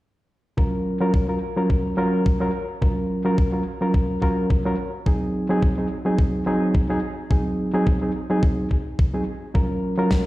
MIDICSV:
0, 0, Header, 1, 3, 480
1, 0, Start_track
1, 0, Tempo, 560748
1, 496, Time_signature, 4, 2, 24, 8
1, 8787, End_track
2, 0, Start_track
2, 0, Title_t, "Reed electric piano"
2, 0, Program_c, 0, 4
2, 489, Note_on_c, 0, 54, 69
2, 492, Note_on_c, 0, 61, 60
2, 495, Note_on_c, 0, 65, 63
2, 498, Note_on_c, 0, 70, 74
2, 832, Note_off_c, 0, 54, 0
2, 834, Note_off_c, 0, 61, 0
2, 835, Note_off_c, 0, 65, 0
2, 837, Note_off_c, 0, 70, 0
2, 861, Note_on_c, 0, 54, 77
2, 864, Note_on_c, 0, 61, 70
2, 866, Note_on_c, 0, 65, 69
2, 869, Note_on_c, 0, 70, 85
2, 1072, Note_off_c, 0, 54, 0
2, 1074, Note_off_c, 0, 61, 0
2, 1075, Note_off_c, 0, 65, 0
2, 1076, Note_off_c, 0, 70, 0
2, 1098, Note_on_c, 0, 54, 66
2, 1101, Note_on_c, 0, 61, 58
2, 1104, Note_on_c, 0, 65, 59
2, 1106, Note_on_c, 0, 70, 73
2, 1177, Note_off_c, 0, 54, 0
2, 1179, Note_off_c, 0, 61, 0
2, 1181, Note_off_c, 0, 65, 0
2, 1182, Note_off_c, 0, 70, 0
2, 1339, Note_on_c, 0, 54, 77
2, 1342, Note_on_c, 0, 61, 73
2, 1345, Note_on_c, 0, 65, 71
2, 1348, Note_on_c, 0, 70, 84
2, 1665, Note_off_c, 0, 54, 0
2, 1667, Note_off_c, 0, 61, 0
2, 1669, Note_off_c, 0, 65, 0
2, 1670, Note_off_c, 0, 70, 0
2, 1686, Note_on_c, 0, 54, 83
2, 1689, Note_on_c, 0, 61, 78
2, 1692, Note_on_c, 0, 65, 78
2, 1695, Note_on_c, 0, 70, 91
2, 2031, Note_off_c, 0, 54, 0
2, 2032, Note_off_c, 0, 61, 0
2, 2034, Note_off_c, 0, 65, 0
2, 2035, Note_off_c, 0, 70, 0
2, 2057, Note_on_c, 0, 54, 85
2, 2060, Note_on_c, 0, 61, 74
2, 2062, Note_on_c, 0, 65, 76
2, 2066, Note_on_c, 0, 70, 89
2, 2137, Note_off_c, 0, 54, 0
2, 2138, Note_off_c, 0, 61, 0
2, 2140, Note_off_c, 0, 65, 0
2, 2141, Note_off_c, 0, 70, 0
2, 2407, Note_on_c, 0, 54, 65
2, 2410, Note_on_c, 0, 61, 61
2, 2413, Note_on_c, 0, 65, 63
2, 2416, Note_on_c, 0, 70, 72
2, 2751, Note_off_c, 0, 54, 0
2, 2753, Note_off_c, 0, 61, 0
2, 2754, Note_off_c, 0, 65, 0
2, 2756, Note_off_c, 0, 70, 0
2, 2780, Note_on_c, 0, 54, 78
2, 2781, Note_on_c, 0, 61, 70
2, 2785, Note_on_c, 0, 65, 71
2, 2788, Note_on_c, 0, 70, 84
2, 2992, Note_off_c, 0, 54, 0
2, 2993, Note_off_c, 0, 61, 0
2, 2994, Note_off_c, 0, 65, 0
2, 2996, Note_off_c, 0, 70, 0
2, 3017, Note_on_c, 0, 54, 65
2, 3021, Note_on_c, 0, 61, 57
2, 3024, Note_on_c, 0, 65, 57
2, 3027, Note_on_c, 0, 70, 71
2, 3097, Note_off_c, 0, 54, 0
2, 3099, Note_off_c, 0, 61, 0
2, 3100, Note_off_c, 0, 65, 0
2, 3102, Note_off_c, 0, 70, 0
2, 3260, Note_on_c, 0, 54, 77
2, 3264, Note_on_c, 0, 61, 69
2, 3267, Note_on_c, 0, 65, 69
2, 3269, Note_on_c, 0, 70, 85
2, 3586, Note_off_c, 0, 54, 0
2, 3588, Note_off_c, 0, 61, 0
2, 3589, Note_off_c, 0, 65, 0
2, 3591, Note_off_c, 0, 70, 0
2, 3608, Note_on_c, 0, 54, 83
2, 3612, Note_on_c, 0, 61, 73
2, 3614, Note_on_c, 0, 65, 79
2, 3618, Note_on_c, 0, 70, 93
2, 3952, Note_off_c, 0, 54, 0
2, 3954, Note_off_c, 0, 61, 0
2, 3955, Note_off_c, 0, 65, 0
2, 3956, Note_off_c, 0, 70, 0
2, 3983, Note_on_c, 0, 54, 86
2, 3985, Note_on_c, 0, 61, 75
2, 3988, Note_on_c, 0, 65, 74
2, 3991, Note_on_c, 0, 70, 90
2, 4060, Note_off_c, 0, 54, 0
2, 4061, Note_off_c, 0, 61, 0
2, 4062, Note_off_c, 0, 65, 0
2, 4064, Note_off_c, 0, 70, 0
2, 4332, Note_on_c, 0, 54, 69
2, 4336, Note_on_c, 0, 60, 63
2, 4338, Note_on_c, 0, 63, 61
2, 4342, Note_on_c, 0, 68, 76
2, 4674, Note_off_c, 0, 54, 0
2, 4676, Note_off_c, 0, 60, 0
2, 4677, Note_off_c, 0, 63, 0
2, 4678, Note_off_c, 0, 68, 0
2, 4702, Note_on_c, 0, 54, 77
2, 4705, Note_on_c, 0, 60, 73
2, 4708, Note_on_c, 0, 63, 70
2, 4711, Note_on_c, 0, 68, 87
2, 4913, Note_off_c, 0, 54, 0
2, 4914, Note_off_c, 0, 60, 0
2, 4916, Note_off_c, 0, 63, 0
2, 4918, Note_off_c, 0, 68, 0
2, 4943, Note_on_c, 0, 54, 66
2, 4946, Note_on_c, 0, 60, 59
2, 4948, Note_on_c, 0, 63, 63
2, 4952, Note_on_c, 0, 68, 71
2, 5020, Note_off_c, 0, 54, 0
2, 5021, Note_off_c, 0, 60, 0
2, 5022, Note_off_c, 0, 63, 0
2, 5024, Note_off_c, 0, 68, 0
2, 5179, Note_on_c, 0, 54, 79
2, 5182, Note_on_c, 0, 60, 75
2, 5185, Note_on_c, 0, 63, 73
2, 5187, Note_on_c, 0, 68, 86
2, 5505, Note_off_c, 0, 54, 0
2, 5507, Note_off_c, 0, 60, 0
2, 5508, Note_off_c, 0, 63, 0
2, 5510, Note_off_c, 0, 68, 0
2, 5530, Note_on_c, 0, 54, 86
2, 5533, Note_on_c, 0, 60, 75
2, 5537, Note_on_c, 0, 63, 78
2, 5538, Note_on_c, 0, 68, 93
2, 5873, Note_off_c, 0, 54, 0
2, 5874, Note_off_c, 0, 60, 0
2, 5876, Note_off_c, 0, 63, 0
2, 5877, Note_off_c, 0, 68, 0
2, 5900, Note_on_c, 0, 54, 84
2, 5903, Note_on_c, 0, 60, 74
2, 5906, Note_on_c, 0, 63, 76
2, 5908, Note_on_c, 0, 68, 93
2, 5979, Note_off_c, 0, 54, 0
2, 5980, Note_off_c, 0, 60, 0
2, 5981, Note_off_c, 0, 63, 0
2, 5983, Note_off_c, 0, 68, 0
2, 6249, Note_on_c, 0, 54, 68
2, 6252, Note_on_c, 0, 60, 64
2, 6256, Note_on_c, 0, 63, 65
2, 6258, Note_on_c, 0, 68, 78
2, 6592, Note_off_c, 0, 54, 0
2, 6594, Note_off_c, 0, 60, 0
2, 6596, Note_off_c, 0, 63, 0
2, 6597, Note_off_c, 0, 68, 0
2, 6619, Note_on_c, 0, 54, 77
2, 6622, Note_on_c, 0, 60, 71
2, 6625, Note_on_c, 0, 63, 69
2, 6628, Note_on_c, 0, 68, 86
2, 6831, Note_off_c, 0, 54, 0
2, 6833, Note_off_c, 0, 60, 0
2, 6834, Note_off_c, 0, 63, 0
2, 6836, Note_off_c, 0, 68, 0
2, 6860, Note_on_c, 0, 54, 65
2, 6862, Note_on_c, 0, 60, 60
2, 6865, Note_on_c, 0, 63, 61
2, 6868, Note_on_c, 0, 68, 75
2, 6938, Note_off_c, 0, 54, 0
2, 6940, Note_off_c, 0, 60, 0
2, 6941, Note_off_c, 0, 63, 0
2, 6942, Note_off_c, 0, 68, 0
2, 7101, Note_on_c, 0, 54, 77
2, 7104, Note_on_c, 0, 60, 69
2, 7107, Note_on_c, 0, 63, 75
2, 7110, Note_on_c, 0, 68, 90
2, 7426, Note_off_c, 0, 54, 0
2, 7428, Note_off_c, 0, 60, 0
2, 7430, Note_off_c, 0, 63, 0
2, 7431, Note_off_c, 0, 68, 0
2, 7818, Note_on_c, 0, 54, 70
2, 7821, Note_on_c, 0, 60, 64
2, 7824, Note_on_c, 0, 63, 62
2, 7826, Note_on_c, 0, 68, 76
2, 7898, Note_off_c, 0, 54, 0
2, 7899, Note_off_c, 0, 60, 0
2, 7900, Note_off_c, 0, 63, 0
2, 7901, Note_off_c, 0, 68, 0
2, 8168, Note_on_c, 0, 54, 68
2, 8171, Note_on_c, 0, 61, 66
2, 8173, Note_on_c, 0, 65, 65
2, 8177, Note_on_c, 0, 70, 77
2, 8512, Note_off_c, 0, 54, 0
2, 8513, Note_off_c, 0, 61, 0
2, 8514, Note_off_c, 0, 65, 0
2, 8516, Note_off_c, 0, 70, 0
2, 8540, Note_on_c, 0, 54, 78
2, 8543, Note_on_c, 0, 61, 71
2, 8546, Note_on_c, 0, 65, 72
2, 8550, Note_on_c, 0, 70, 87
2, 8752, Note_off_c, 0, 54, 0
2, 8754, Note_off_c, 0, 61, 0
2, 8755, Note_off_c, 0, 65, 0
2, 8757, Note_off_c, 0, 70, 0
2, 8787, End_track
3, 0, Start_track
3, 0, Title_t, "Drums"
3, 494, Note_on_c, 9, 36, 98
3, 580, Note_off_c, 9, 36, 0
3, 974, Note_on_c, 9, 36, 107
3, 1060, Note_off_c, 9, 36, 0
3, 1454, Note_on_c, 9, 36, 104
3, 1540, Note_off_c, 9, 36, 0
3, 1934, Note_on_c, 9, 36, 102
3, 2020, Note_off_c, 9, 36, 0
3, 2414, Note_on_c, 9, 36, 106
3, 2500, Note_off_c, 9, 36, 0
3, 2894, Note_on_c, 9, 36, 109
3, 2980, Note_off_c, 9, 36, 0
3, 3374, Note_on_c, 9, 36, 111
3, 3460, Note_off_c, 9, 36, 0
3, 3614, Note_on_c, 9, 36, 55
3, 3700, Note_off_c, 9, 36, 0
3, 3855, Note_on_c, 9, 36, 106
3, 3940, Note_off_c, 9, 36, 0
3, 4335, Note_on_c, 9, 36, 105
3, 4420, Note_off_c, 9, 36, 0
3, 4815, Note_on_c, 9, 36, 115
3, 4900, Note_off_c, 9, 36, 0
3, 5295, Note_on_c, 9, 36, 111
3, 5380, Note_off_c, 9, 36, 0
3, 5774, Note_on_c, 9, 36, 109
3, 5860, Note_off_c, 9, 36, 0
3, 6254, Note_on_c, 9, 36, 103
3, 6340, Note_off_c, 9, 36, 0
3, 6734, Note_on_c, 9, 36, 113
3, 6820, Note_off_c, 9, 36, 0
3, 7214, Note_on_c, 9, 36, 111
3, 7300, Note_off_c, 9, 36, 0
3, 7455, Note_on_c, 9, 36, 54
3, 7540, Note_off_c, 9, 36, 0
3, 7695, Note_on_c, 9, 36, 108
3, 7781, Note_off_c, 9, 36, 0
3, 8174, Note_on_c, 9, 36, 108
3, 8260, Note_off_c, 9, 36, 0
3, 8651, Note_on_c, 9, 38, 96
3, 8654, Note_on_c, 9, 36, 106
3, 8737, Note_off_c, 9, 38, 0
3, 8740, Note_off_c, 9, 36, 0
3, 8787, End_track
0, 0, End_of_file